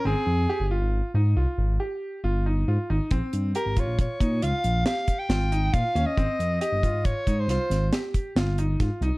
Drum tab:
HH |--------------|xxxxxxxxxxxxxx|xxxxxxxxxxxxxx|
SD |--------------|--------o-o---|------ooo-o-o-|
BD |--------------|o--ooo---o--o-|o--ooo---o--o-|